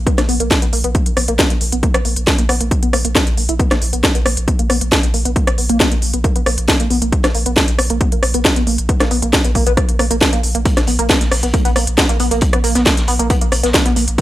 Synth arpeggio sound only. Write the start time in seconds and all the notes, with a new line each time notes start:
0.07 B3
0.18 A#3
0.29 B3
0.40 A#3
0.62 B3
0.73 A#3
0.84 B3
0.95 A#3
1.17 B3
1.28 A#3
1.39 B3
1.50 A#3
1.72 B3
1.83 A#3
1.94 B3
2.05 A#3
2.27 B3
2.39 A#3
2.49 B3
2.61 A#3
2.83 B3
2.93 A#3
3.05 A#3
3.15 A#3
3.37 A#3
3.49 E4
3.60 B3
3.71 A#3
3.93 B3
4.04 A#3
4.15 B3
4.26 A#3
4.48 B3
4.59 A#3
4.70 B3
4.81 A#3
5.03 B3
5.14 A#3
5.25 B3
5.36 A#3
5.58 B3
5.70 A#3
5.80 B3
5.92 A#3
6.14 B3
6.24 A#3
6.36 B3
6.46 A#3
6.68 B3
6.80 A#3
6.91 B3
7.02 A#3
7.24 B3
7.35 A#3
7.46 B3
7.57 A#3
7.79 B3
7.90 A#3
8.01 B3
8.12 A#3
8.34 B3
8.45 A#3
8.56 B3
8.67 A#3
8.89 B3
9.01 A#3
9.11 B3
9.23 A#3
9.45 B3
9.55 A#3
9.67 B3
9.77 A#3
9.99 A#3
10.11 A#3
10.21 B3
10.33 A#3
10.55 A#3
10.65 A#3
10.88 B3
10.99 A#3
11.10 B3
11.21 A#3
11.43 B3
11.54 A#3
11.65 B3
11.76 A#3
11.98 B3
12.09 A#3
12.20 B3
12.31 A#3
12.53 B3
12.64 A#3
12.75 B3
12.86 A#3
13.08 B3
13.19 A#3
13.30 B3
13.41 A#3
13.63 B3
13.74 A#3
13.86 B3
13.96 A#3